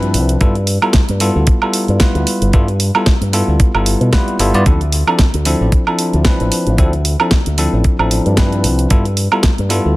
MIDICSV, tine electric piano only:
0, 0, Header, 1, 2, 480
1, 0, Start_track
1, 0, Tempo, 530973
1, 372, Time_signature, 4, 2, 24, 8
1, 9009, End_track
2, 0, Start_track
2, 0, Title_t, "Tine electric piano"
2, 0, Program_c, 0, 4
2, 0, Note_on_c, 0, 53, 79
2, 0, Note_on_c, 0, 60, 70
2, 0, Note_on_c, 0, 62, 70
2, 0, Note_on_c, 0, 64, 73
2, 0, Note_on_c, 0, 71, 87
2, 343, Note_off_c, 0, 53, 0
2, 343, Note_off_c, 0, 60, 0
2, 345, Note_off_c, 0, 62, 0
2, 345, Note_off_c, 0, 64, 0
2, 347, Note_off_c, 0, 71, 0
2, 365, Note_on_c, 0, 55, 83
2, 368, Note_on_c, 0, 59, 79
2, 370, Note_on_c, 0, 64, 75
2, 373, Note_on_c, 0, 65, 75
2, 375, Note_on_c, 0, 69, 94
2, 492, Note_off_c, 0, 55, 0
2, 493, Note_off_c, 0, 59, 0
2, 494, Note_off_c, 0, 64, 0
2, 496, Note_off_c, 0, 65, 0
2, 497, Note_off_c, 0, 69, 0
2, 741, Note_on_c, 0, 55, 76
2, 744, Note_on_c, 0, 59, 67
2, 745, Note_on_c, 0, 64, 67
2, 747, Note_on_c, 0, 65, 69
2, 751, Note_on_c, 0, 69, 85
2, 912, Note_off_c, 0, 55, 0
2, 913, Note_off_c, 0, 59, 0
2, 914, Note_off_c, 0, 64, 0
2, 915, Note_off_c, 0, 65, 0
2, 917, Note_off_c, 0, 69, 0
2, 1088, Note_on_c, 0, 55, 81
2, 1089, Note_on_c, 0, 59, 75
2, 1093, Note_on_c, 0, 64, 76
2, 1093, Note_on_c, 0, 65, 76
2, 1095, Note_on_c, 0, 69, 90
2, 1432, Note_off_c, 0, 55, 0
2, 1433, Note_off_c, 0, 59, 0
2, 1435, Note_off_c, 0, 64, 0
2, 1435, Note_off_c, 0, 65, 0
2, 1436, Note_off_c, 0, 69, 0
2, 1462, Note_on_c, 0, 55, 72
2, 1465, Note_on_c, 0, 59, 65
2, 1466, Note_on_c, 0, 64, 64
2, 1466, Note_on_c, 0, 65, 62
2, 1472, Note_on_c, 0, 69, 76
2, 1785, Note_off_c, 0, 55, 0
2, 1786, Note_off_c, 0, 59, 0
2, 1787, Note_off_c, 0, 64, 0
2, 1787, Note_off_c, 0, 65, 0
2, 1790, Note_off_c, 0, 69, 0
2, 1810, Note_on_c, 0, 55, 80
2, 1812, Note_on_c, 0, 59, 69
2, 1813, Note_on_c, 0, 64, 70
2, 1817, Note_on_c, 0, 65, 73
2, 1818, Note_on_c, 0, 71, 88
2, 2266, Note_off_c, 0, 55, 0
2, 2267, Note_off_c, 0, 59, 0
2, 2267, Note_off_c, 0, 64, 0
2, 2269, Note_off_c, 0, 65, 0
2, 2270, Note_off_c, 0, 71, 0
2, 2290, Note_on_c, 0, 55, 84
2, 2292, Note_on_c, 0, 59, 77
2, 2294, Note_on_c, 0, 64, 77
2, 2294, Note_on_c, 0, 65, 78
2, 2298, Note_on_c, 0, 69, 90
2, 2414, Note_off_c, 0, 55, 0
2, 2415, Note_off_c, 0, 59, 0
2, 2416, Note_off_c, 0, 64, 0
2, 2416, Note_off_c, 0, 65, 0
2, 2418, Note_off_c, 0, 69, 0
2, 2666, Note_on_c, 0, 55, 76
2, 2669, Note_on_c, 0, 59, 68
2, 2670, Note_on_c, 0, 64, 67
2, 2672, Note_on_c, 0, 65, 70
2, 2674, Note_on_c, 0, 69, 82
2, 2834, Note_off_c, 0, 55, 0
2, 2836, Note_off_c, 0, 59, 0
2, 2836, Note_off_c, 0, 64, 0
2, 2838, Note_off_c, 0, 65, 0
2, 2838, Note_off_c, 0, 69, 0
2, 3007, Note_on_c, 0, 55, 80
2, 3011, Note_on_c, 0, 59, 75
2, 3013, Note_on_c, 0, 64, 76
2, 3014, Note_on_c, 0, 65, 74
2, 3018, Note_on_c, 0, 69, 91
2, 3352, Note_off_c, 0, 55, 0
2, 3354, Note_off_c, 0, 59, 0
2, 3355, Note_off_c, 0, 64, 0
2, 3355, Note_off_c, 0, 65, 0
2, 3357, Note_off_c, 0, 69, 0
2, 3386, Note_on_c, 0, 55, 72
2, 3388, Note_on_c, 0, 59, 64
2, 3389, Note_on_c, 0, 64, 64
2, 3394, Note_on_c, 0, 65, 62
2, 3394, Note_on_c, 0, 69, 78
2, 3707, Note_off_c, 0, 55, 0
2, 3708, Note_off_c, 0, 59, 0
2, 3708, Note_off_c, 0, 64, 0
2, 3710, Note_off_c, 0, 65, 0
2, 3711, Note_off_c, 0, 69, 0
2, 3729, Note_on_c, 0, 55, 89
2, 3731, Note_on_c, 0, 59, 80
2, 3734, Note_on_c, 0, 64, 80
2, 3735, Note_on_c, 0, 65, 78
2, 3739, Note_on_c, 0, 71, 96
2, 3946, Note_off_c, 0, 55, 0
2, 3946, Note_off_c, 0, 59, 0
2, 3948, Note_off_c, 0, 64, 0
2, 3948, Note_off_c, 0, 65, 0
2, 3950, Note_off_c, 0, 71, 0
2, 3973, Note_on_c, 0, 55, 93
2, 3975, Note_on_c, 0, 59, 84
2, 3975, Note_on_c, 0, 64, 85
2, 3978, Note_on_c, 0, 65, 81
2, 3980, Note_on_c, 0, 69, 100
2, 4087, Note_off_c, 0, 55, 0
2, 4088, Note_off_c, 0, 59, 0
2, 4088, Note_off_c, 0, 64, 0
2, 4089, Note_off_c, 0, 65, 0
2, 4091, Note_off_c, 0, 69, 0
2, 4104, Note_on_c, 0, 55, 85
2, 4106, Note_on_c, 0, 59, 77
2, 4108, Note_on_c, 0, 64, 74
2, 4112, Note_on_c, 0, 65, 75
2, 4112, Note_on_c, 0, 74, 94
2, 4186, Note_off_c, 0, 55, 0
2, 4187, Note_off_c, 0, 59, 0
2, 4188, Note_off_c, 0, 64, 0
2, 4190, Note_off_c, 0, 65, 0
2, 4190, Note_off_c, 0, 74, 0
2, 4210, Note_on_c, 0, 53, 81
2, 4211, Note_on_c, 0, 60, 75
2, 4215, Note_on_c, 0, 62, 74
2, 4220, Note_on_c, 0, 69, 93
2, 4334, Note_off_c, 0, 53, 0
2, 4335, Note_off_c, 0, 60, 0
2, 4337, Note_off_c, 0, 62, 0
2, 4339, Note_off_c, 0, 69, 0
2, 4585, Note_on_c, 0, 53, 72
2, 4587, Note_on_c, 0, 60, 68
2, 4590, Note_on_c, 0, 62, 68
2, 4591, Note_on_c, 0, 64, 69
2, 4594, Note_on_c, 0, 69, 83
2, 4754, Note_off_c, 0, 53, 0
2, 4755, Note_off_c, 0, 60, 0
2, 4756, Note_off_c, 0, 62, 0
2, 4757, Note_off_c, 0, 64, 0
2, 4758, Note_off_c, 0, 69, 0
2, 4932, Note_on_c, 0, 53, 79
2, 4935, Note_on_c, 0, 60, 75
2, 4936, Note_on_c, 0, 62, 72
2, 4938, Note_on_c, 0, 64, 75
2, 4940, Note_on_c, 0, 69, 93
2, 5274, Note_off_c, 0, 53, 0
2, 5276, Note_off_c, 0, 60, 0
2, 5276, Note_off_c, 0, 62, 0
2, 5277, Note_off_c, 0, 64, 0
2, 5278, Note_off_c, 0, 69, 0
2, 5306, Note_on_c, 0, 53, 72
2, 5308, Note_on_c, 0, 60, 65
2, 5311, Note_on_c, 0, 62, 64
2, 5312, Note_on_c, 0, 64, 62
2, 5316, Note_on_c, 0, 69, 80
2, 5627, Note_off_c, 0, 53, 0
2, 5628, Note_off_c, 0, 60, 0
2, 5629, Note_off_c, 0, 62, 0
2, 5630, Note_off_c, 0, 64, 0
2, 5632, Note_off_c, 0, 69, 0
2, 5655, Note_on_c, 0, 53, 78
2, 5656, Note_on_c, 0, 60, 70
2, 5659, Note_on_c, 0, 62, 70
2, 5662, Note_on_c, 0, 64, 71
2, 5663, Note_on_c, 0, 71, 87
2, 6108, Note_off_c, 0, 53, 0
2, 6109, Note_off_c, 0, 60, 0
2, 6111, Note_off_c, 0, 62, 0
2, 6112, Note_off_c, 0, 64, 0
2, 6112, Note_off_c, 0, 71, 0
2, 6129, Note_on_c, 0, 53, 84
2, 6131, Note_on_c, 0, 60, 79
2, 6134, Note_on_c, 0, 62, 77
2, 6136, Note_on_c, 0, 64, 76
2, 6137, Note_on_c, 0, 69, 94
2, 6254, Note_off_c, 0, 53, 0
2, 6255, Note_off_c, 0, 60, 0
2, 6256, Note_off_c, 0, 62, 0
2, 6257, Note_off_c, 0, 64, 0
2, 6258, Note_off_c, 0, 69, 0
2, 6506, Note_on_c, 0, 53, 73
2, 6510, Note_on_c, 0, 60, 69
2, 6513, Note_on_c, 0, 62, 66
2, 6513, Note_on_c, 0, 64, 69
2, 6517, Note_on_c, 0, 69, 82
2, 6674, Note_off_c, 0, 53, 0
2, 6676, Note_off_c, 0, 60, 0
2, 6678, Note_off_c, 0, 62, 0
2, 6678, Note_off_c, 0, 64, 0
2, 6680, Note_off_c, 0, 69, 0
2, 6849, Note_on_c, 0, 53, 81
2, 6852, Note_on_c, 0, 60, 77
2, 6854, Note_on_c, 0, 62, 76
2, 6855, Note_on_c, 0, 64, 76
2, 6858, Note_on_c, 0, 69, 92
2, 7193, Note_off_c, 0, 53, 0
2, 7195, Note_off_c, 0, 60, 0
2, 7195, Note_off_c, 0, 62, 0
2, 7196, Note_off_c, 0, 64, 0
2, 7197, Note_off_c, 0, 69, 0
2, 7223, Note_on_c, 0, 53, 72
2, 7226, Note_on_c, 0, 60, 67
2, 7228, Note_on_c, 0, 62, 63
2, 7231, Note_on_c, 0, 64, 65
2, 7233, Note_on_c, 0, 69, 82
2, 7545, Note_off_c, 0, 53, 0
2, 7547, Note_off_c, 0, 60, 0
2, 7548, Note_off_c, 0, 62, 0
2, 7549, Note_off_c, 0, 64, 0
2, 7550, Note_off_c, 0, 69, 0
2, 7569, Note_on_c, 0, 53, 80
2, 7570, Note_on_c, 0, 60, 71
2, 7573, Note_on_c, 0, 62, 74
2, 7576, Note_on_c, 0, 64, 73
2, 7578, Note_on_c, 0, 71, 83
2, 8025, Note_off_c, 0, 53, 0
2, 8026, Note_off_c, 0, 60, 0
2, 8027, Note_off_c, 0, 62, 0
2, 8029, Note_off_c, 0, 64, 0
2, 8030, Note_off_c, 0, 71, 0
2, 8048, Note_on_c, 0, 55, 81
2, 8048, Note_on_c, 0, 59, 76
2, 8052, Note_on_c, 0, 64, 79
2, 8054, Note_on_c, 0, 65, 77
2, 8056, Note_on_c, 0, 69, 93
2, 8173, Note_off_c, 0, 55, 0
2, 8173, Note_off_c, 0, 59, 0
2, 8175, Note_off_c, 0, 64, 0
2, 8176, Note_off_c, 0, 65, 0
2, 8177, Note_off_c, 0, 69, 0
2, 8423, Note_on_c, 0, 55, 75
2, 8426, Note_on_c, 0, 59, 69
2, 8428, Note_on_c, 0, 64, 69
2, 8431, Note_on_c, 0, 65, 70
2, 8432, Note_on_c, 0, 69, 83
2, 8593, Note_off_c, 0, 55, 0
2, 8594, Note_off_c, 0, 59, 0
2, 8595, Note_off_c, 0, 64, 0
2, 8597, Note_off_c, 0, 65, 0
2, 8597, Note_off_c, 0, 69, 0
2, 8764, Note_on_c, 0, 55, 84
2, 8766, Note_on_c, 0, 59, 75
2, 8770, Note_on_c, 0, 64, 79
2, 8771, Note_on_c, 0, 65, 76
2, 8774, Note_on_c, 0, 69, 89
2, 9009, Note_off_c, 0, 55, 0
2, 9009, Note_off_c, 0, 59, 0
2, 9009, Note_off_c, 0, 64, 0
2, 9009, Note_off_c, 0, 65, 0
2, 9009, Note_off_c, 0, 69, 0
2, 9009, End_track
0, 0, End_of_file